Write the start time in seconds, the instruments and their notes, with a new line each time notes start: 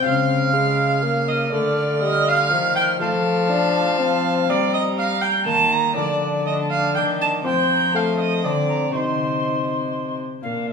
Already playing: bassoon C4
0.02 cello C#3, harp C#3 G#3 C#4 F4, viola F5, recorder F6
0.53 bassoon G#3
1.03 bassoon A#3
1.28 viola D#5
1.51 cello D3, harp A3 D4 A4, bassoon A3, viola D5, recorder F6
2.02 bassoon G3, viola D#5
2.28 viola F5
2.51 cello D#3, harp D#3, bassoon F3
2.76 viola G5
2.99 cello F3, harp F3 A3 A4, bassoon A3, viola F5, recorder A5
3.49 bassoon D4
3.99 bassoon C4
4.45 cello G3, harp G3 A#3 D4 G4, recorder A#5
4.50 viola D5
4.74 viola D#5
4.98 viola F5
5.22 viola G5
5.46 cello D#3, harp D#3, bassoon A#3, viola A5
5.72 viola A#5
5.93 cello D3, harp F3 A3 D4 F4, bassoon D4, viola D5, recorder A5
6.45 viola D#5, recorder A5
6.70 viola F5
6.95 cello D#3, harp D#3, viola G5, recorder D6
7.21 viola A5
7.42 cello F3, harp F3 A3 C4 F4, bassoon C4, viola G5, recorder C6
7.69 recorder C6
7.74 recorder A#5
7.93 bassoon A3, viola F5, recorder A5
8.20 viola D#5
8.43 cello D3, harp D3, bassoon C4, viola D5, recorder A5
8.68 recorder A#5
8.92 cello C3, harp C3 C4 D#4, bassoon D#4, viola C5, recorder C#6
8.97 recorder C6
10.41 cello A#2, harp A#2 A#3 D4 F4, recorder F5
10.45 bassoon A#3, viola D4
10.69 recorder E5